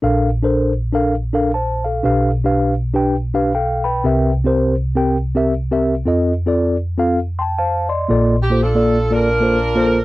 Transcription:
0.02 A#1 A#2 D4 A4 A#4 F5
0.42 D4 A4 A#4 C5
0.93 D4 A4 A#4 F5
1.33 D4 A4 A#4 F5
1.54 C5 A5
1.84 A4 F5
2.03 B1 B2 D4 G4 B4 F5
2.44 D4 G4 B4 F5
2.94 D4 G4 B4 G5
3.34 D4 G4 B4 F5
3.55 A4 F5 G5
3.84 B4 G5 B5
4.04 C2 C3 C4 G4 A#4 E5
4.44 C4 G4 A#4 C5
4.95 C4 G4 A#4 G5
5.35 C4 G4 A#4 E5
5.71 C4 G4 A#4 E5
6.06 F2 C4 F4 A4 D#5
6.46 C4 F4 A4 D5
6.98 C4 F4 A4 F5
7.39 G5 A5 C6
7.58 C5 F5 A5
7.89 D5 D#5 C6
8.09 A#1 A#2 A#3 F4 A4 D5
8.42 G4
8.50 A#3 F4 A4 C5
8.62 D4 F4 A4
8.75 A#3 F4 A4 D5
9.11 A#3 D4 F4 A4 A#4 D5
9.41 A#3 F4 A4 C5
9.75 A#3 F4 A4 C5

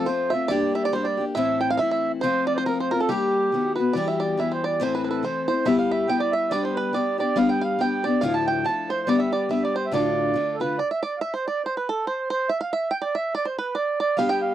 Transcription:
0.06 F3 A3 C4 F4 C5
0.30 A3 F4 E5
0.34 C4
0.48 G3 A#3 D4 G4 D5
0.75 E5
0.84 D5
0.93 G3 A#3 D4 G4 C5
1.04 D5
1.17 A#3 D4 G4
1.35 A2 E3 A3 C4 E4 E5
1.61 G5
1.70 F5
1.77 E3 A3 C4 E5 F5
1.82 E4
1.91 E5
2.21 F3 A3 C4 F4 C5
2.47 D5
2.55 C5 D5
2.65 F3 A3 C4 F4 A#4
2.80 C5
2.91 A3 C4 F4 A#4
3.00 A4
3.09 G3 A#3 D4 G4
3.52 D#3 A3 B3 F#4
3.76 A3 F#4 B4
3.80 B3 B4
3.93 E3 G3 B3 D5
3.97 G4
4.08 E5
4.20 D5
4.37 E3 G3 B3 G4 E5
4.52 C5
4.64 D5
4.80 A2 E3 A3 C4 E4 C5
4.95 B4
5.04 A4 B4
5.11 B4
5.23 E3 A3 C4 E4 C5
5.48 A3 C4 E4 C5
5.65 G3 B3 E4 G4 E5
5.79 F5
5.91 E5
6.08 G3 B3 E4 G4 G5
6.20 D5
6.32 E5
6.51 G3 B3 D4 G4 D5
6.63 C5
6.74 B4
6.93 G3 B3 D4 G4 D5
7.18 B3 D4 G4 D5
7.36 G3 B3 D4 G4 F5
7.49 G5
7.61 F5
7.79 G3 B3 D4 G4 G5
8.03 B3 D4 G4 D5
8.21 D2 A2 F3 A3 D4 E4 F5
8.34 A5
8.47 G5
8.65 F3 A3 D4 E4 A5
8.90 C5
9.07 G3 B3 D4 G4 D5
9.19 E5
9.32 D5
9.49 G3 B3 D4 G4 E5
9.63 D5
9.75 C5
9.86 E5
9.91 D2 A2 D3 A3 D4 F4 D5
10.34 D3 A3 D4 F4
10.54 A4
10.60 D3 A3 D4 F4 B4
10.78 D5
10.91 E5
11.03 D5
11.18 E5 F5
11.23 E5
11.34 C5
11.46 D5
11.65 C5
11.77 B4
11.89 A4
12.07 C5
12.30 C5
12.49 E5
12.61 F5
12.73 E5
12.91 G5
13.02 D5
13.15 E5
13.35 D5
13.45 C5
13.58 B4
13.75 D5
14.00 D5
14.17 G3 B3 D4 G4 F5
14.29 G5
14.42 F5

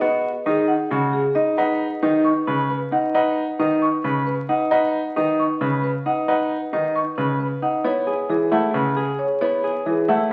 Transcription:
0.01 B3 F#4 D#5
0.46 D#3 D#4 G#4
0.68 F#5
0.91 C#3 F#4
1.13 G#4
1.35 D#4 D#5
1.57 D#4 B4 F#5
2.02 D#3 D#4 B4
2.24 C#6
2.47 C#3 B4
2.70 B4
2.92 D#4 F#5
3.14 D#4 B4 F#5
3.59 D#3 D#4 B4
3.82 C#6
4.04 C#3 B4
4.27 B4
4.49 D#4 F#5
4.71 D#4 B4 F#5
5.16 D#3 D#4 B4
5.39 C#6
5.61 C#3 B4
5.84 B4
6.06 D#4 F#5
6.28 D#4 B4 F#5
6.73 D#3 D#4 B4
6.96 C#6
7.18 C#3 B4
7.40 B4
7.62 D#4 F#5
7.84 B3 E4 C#5
8.07 G#4
8.29 E3 G#4
8.52 A3 E4 F#5
8.74 C#3 B4
8.97 G#4
9.19 C#5
9.41 B3 E4 C#5
9.64 G#4
9.86 E3 G#4
10.08 A3 E4 F#5

